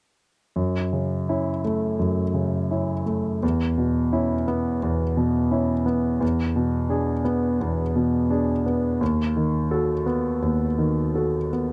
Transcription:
0.56 1.96 F#2 soft
0.93 1.50 C#3 soft
1.29 1.61 C#4 soft
1.29 1.61 E4 soft
1.65 2.21 A3 soft
1.99 3.38 F#2 soft
2.34 2.92 C#3 soft
2.71 3.03 C#4 soft
2.71 3.03 E4 soft
3.06 3.42 A3 soft
3.43 4.78 E2 soft
3.78 4.34 B2 soft
4.13 4.44 C#4 soft
4.13 4.44 E4 soft
4.48 5.03 B3 soft
4.83 6.18 E2 soft
5.17 5.73 B2 soft
5.51 5.83 C#4 soft
5.51 5.83 E4 soft
5.86 6.21 B3 soft
6.20 7.56 E2 soft
6.56 7.11 B2 soft
6.89 7.21 D4 soft
6.89 7.22 G#4 soft
7.25 7.81 B3 soft
7.61 8.97 E2 soft
7.96 8.52 B2 soft
8.30 8.62 D4 soft
8.30 8.62 G#4 soft
8.66 9.01 B3 soft
9.01 10.40 D#2 soft
9.37 9.93 D#3 soft
9.71 10.03 F#4 soft
9.71 10.04 A4 soft
10.06 10.65 B3 soft
10.42 11.72 D#2 soft
10.79 11.38 D#3 soft
11.15 11.49 F#4 soft
11.15 11.49 A4 soft
11.53 11.72 B3 soft

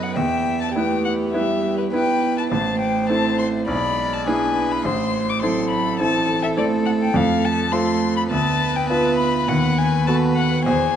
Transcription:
0.00 0.19 F#2 soft
0.00 0.19 F#3 soft
0.00 0.13 B3 soft
0.00 0.13 D#4 soft
0.00 0.13 A4 soft
0.00 0.18 B4 soft
0.00 0.15 F#5 medium
0.16 0.74 E2 soft
0.16 0.77 B3 soft
0.16 0.75 E5 soft
0.16 0.59 G5 medium
0.61 0.74 A5 medium
0.75 1.35 A3 soft
0.75 1.30 B3 soft
0.75 1.30 E4 soft
0.75 1.91 G4 soft
0.75 1.30 B4 soft
0.75 1.04 G5 medium
1.05 1.13 F#5 medium
1.33 1.92 G3 soft
1.33 1.89 B3 soft
1.33 1.89 E4 soft
1.33 1.89 B4 soft
1.33 1.77 E5 medium
1.78 1.84 B4 soft
1.93 2.53 B3 soft
1.93 2.48 B3 soft
1.93 2.48 E4 soft
1.93 2.48 B4 soft
1.93 2.51 B4 medium
1.93 2.36 G5 medium
2.38 2.43 A5 medium
2.51 3.08 A1 soft
2.51 3.70 A3 soft
2.51 3.65 C5 medium
2.51 2.80 A5 medium
2.80 3.09 G5 medium
3.09 3.63 C4 soft
3.09 3.64 E4 soft
3.09 3.64 A4 soft
3.09 3.38 A5 medium
3.39 3.47 C6 medium
3.68 4.24 B1 medium
3.68 4.29 G#3 soft
3.68 4.29 D5 medium
3.68 4.15 B5 medium
4.13 4.27 A5 medium
4.26 4.85 B3 soft
4.26 4.80 D4 soft
4.26 4.81 E4 soft
4.26 4.81 G#4 soft
4.26 4.87 B4 medium
4.26 4.73 G#5 medium
4.72 4.85 B5 medium
4.85 5.40 A1 soft
4.85 5.44 A3 soft
4.85 5.43 C5 medium
4.85 5.31 C6 medium
5.29 5.42 D6 medium
5.42 6.01 F#3 soft
5.42 5.96 C4 soft
5.42 5.96 E4 soft
5.42 8.30 A4 medium
5.42 5.96 A4 soft
5.42 5.70 C6 medium
5.71 5.99 B5 medium
5.99 6.58 E3 soft
5.99 6.53 C4 soft
5.99 6.53 E4 soft
5.99 6.53 A4 soft
5.99 6.42 A5 medium
6.43 6.49 E5 medium
6.57 7.14 A3 medium
6.57 7.10 C4 soft
6.57 7.10 E4 soft
6.57 7.11 A4 soft
6.57 6.65 D5 medium
6.86 6.91 F#5 medium
7.02 7.17 G5 medium
7.14 7.70 F2 medium
7.14 7.68 A3 soft
7.14 7.46 F5 medium
7.45 7.74 A5 medium
7.72 8.29 A3 soft
7.72 8.27 C4 soft
7.72 8.27 F4 soft
7.72 8.27 A4 soft
7.72 8.16 C6 medium
8.17 8.22 B5 medium
8.31 8.87 D2 medium
8.31 8.88 B3 medium
8.31 10.62 B4 medium
8.31 8.78 A5 medium
8.76 8.89 G5 medium
8.89 9.47 B3 medium
8.89 9.44 B3 soft
8.89 9.44 F4 soft
8.89 9.45 B4 soft
8.89 9.18 A5 medium
9.19 9.49 B5 medium
9.48 10.05 D#2 soft
9.48 10.06 B3 medium
9.48 9.79 F#5 medium
9.78 10.06 G#5 medium
10.07 10.65 B3 medium
10.07 10.62 B3 soft
10.07 10.62 F#4 soft
10.07 10.62 A4 soft
10.07 10.15 A5 medium
10.36 10.65 F#5 medium
10.65 10.96 E2 medium
10.65 10.96 B3 medium
10.65 10.94 C5 medium
10.65 10.96 G#5 medium

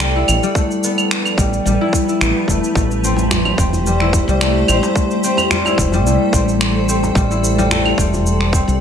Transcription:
0.00 0.22 C2 loud
0.00 0.42 G3 medium
0.00 0.57 A3 medium
0.00 0.90 C4 medium
0.00 0.16 E4 medium
0.00 0.53 A4 medium
0.00 0.53 D5 medium
0.00 finger snap loud
0.00 shaker soft
0.16 1.81 E4 medium
0.28 0.38 A1 loud
0.28 claves medium
0.28 shaker medium
0.43 0.60 G3 loud
0.43 shaker soft
0.54 2.73 F3 medium
0.54 2.73 G3 medium
0.54 2.49 A3 medium
0.54 2.73 B4 medium
0.54 kick loud
0.54 shaker soft
0.71 shaker soft
0.84 2.22 B3 medium
0.84 shaker medium
0.98 claves medium
0.98 shaker soft
1.11 finger snap loud
1.11 shaker soft
1.25 claves medium
1.25 shaker soft
1.38 1.58 A1 loud
1.38 1.66 G3 medium
1.38 kick loud
1.38 shaker medium
1.53 shaker soft
1.65 1.76 A1 loud
1.65 2.80 G3 medium
1.65 shaker soft
1.81 2.08 E4 medium
1.93 kick loud
1.93 shaker medium
2.09 4.01 E4 medium
2.09 shaker soft
2.21 2.31 A1 loud
2.21 3.10 B3 medium
2.21 finger snap loud
2.21 shaker soft
2.48 2.58 E1 loud
2.48 2.76 A3 medium
2.48 kick medium
2.48 shaker medium
2.64 shaker soft
2.75 3.52 A1 loud
2.75 7.12 A3 medium
2.75 4.42 A3 medium
2.75 4.93 G4 medium
2.75 7.12 C5 medium
2.75 kick loud
2.75 shaker soft
2.91 shaker soft
3.04 3.59 C4 medium
3.04 shaker medium
3.16 djembe tone medium
3.16 shaker soft
3.31 finger snap loud
3.31 djembe bass loud
3.31 shaker soft
3.45 djembe slap soft
3.45 djembe tone medium
3.45 claves medium
3.58 4.21 E1 loud
3.58 4.69 C4 medium
3.58 kick loud
3.58 shaker medium
3.73 djembe bass medium
3.73 shaker soft
3.86 4.28 G3 medium
3.86 shaker soft
4.00 5.66 E4 medium
4.00 finger snap soft
4.13 kick loud
4.13 shaker medium
4.28 4.62 C2 loud
4.28 5.51 G3 loud
4.28 shaker soft
4.41 6.06 A3 medium
4.41 finger snap medium
4.41 shaker soft
4.68 4.79 A1 loud
4.68 5.24 C4 medium
4.68 djembe tone medium
4.68 claves medium
4.68 shaker medium
4.83 djembe slap medium
4.83 shaker soft
4.96 8.80 A4 medium
4.96 kick loud
4.96 shaker soft
5.11 shaker soft
5.24 6.34 C4 medium
5.24 shaker medium
5.37 djembe tone medium
5.37 claves medium
5.37 shaker soft
5.50 5.92 G3 medium
5.50 finger snap loud
5.50 djembe bass medium
5.50 shaker soft
5.65 7.31 E4 medium
5.65 djembe tone medium
5.65 claves medium
5.65 shaker soft
5.78 6.05 E1 loud
5.78 kick loud
5.78 djembe slap soft
5.78 shaker medium
5.92 7.15 G3 loud
5.92 djembe bass medium
5.92 shaker soft
6.05 6.16 C2 loud
6.05 7.71 A3 medium
6.05 shaker soft
6.33 7.10 A1 loud
6.33 6.89 C4 medium
6.33 kick loud
6.33 shaker medium
6.48 shaker soft
6.61 finger snap loud
6.61 shaker soft
6.89 7.98 C4 medium
6.89 shaker medium
7.03 djembe tone medium
7.03 shaker soft
7.15 7.92 A1 loud
7.15 7.57 G3 medium
7.15 8.80 D5 medium
7.15 kick loud
7.15 shaker soft
7.31 8.80 E4 medium
7.31 shaker soft
7.44 shaker medium
7.58 8.80 G3 loud
7.58 djembe tone medium
7.58 shaker soft
7.71 8.80 A3 medium
7.71 finger snap loud
7.71 djembe bass medium
7.71 shaker soft
7.86 djembe slap soft
7.86 djembe tone medium
7.86 claves medium
7.98 8.61 E1 loud
7.98 8.54 C4 medium
7.98 kick loud
7.98 shaker medium
8.14 djembe bass medium
8.14 shaker soft
8.27 shaker soft
8.41 finger snap soft
8.53 8.80 C4 medium
8.53 kick loud
8.53 shaker medium
8.68 8.80 C2 loud
8.68 shaker soft

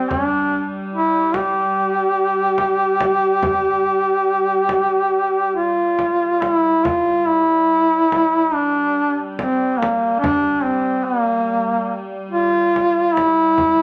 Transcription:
0.00 6.84 G3 soft
0.00 0.11 C4 medium
0.09 0.66 D4 medium
0.09 frame drum medium
0.93 1.37 E4 medium
1.34 5.55 G4 medium
1.34 frame drum medium
2.58 frame drum soft
3.01 frame drum medium
3.42 frame drum medium
4.69 frame drum medium
5.56 6.43 F4 medium
5.99 frame drum soft
6.42 6.54 F4 medium
6.42 frame drum soft
6.54 6.87 E4 medium
6.85 13.82 G3 soft
6.85 7.30 F4 loud
6.85 frame drum medium
7.28 8.55 E4 loud
8.12 frame drum medium
8.53 9.19 D4 medium
9.36 9.80 C4 medium
9.36 frame drum soft
9.78 10.19 A#3 medium
9.82 frame drum medium
10.20 10.65 D4 medium
10.24 frame drum medium
10.63 11.06 C4 medium
11.05 12.06 A#3 medium
12.31 13.16 F4 loud
12.76 frame drum soft
13.14 13.82 E4 loud
13.14 frame drum soft
13.58 frame drum medium

